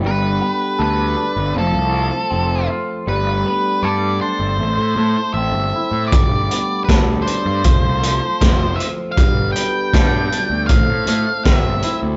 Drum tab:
HH |--------|--------|xxxxxxxx|xxxxxxxx|
SD |--------|--------|--o---o-|--o---o-|
BD |--------|--------|o-o-o-o-|o-o-o-o-|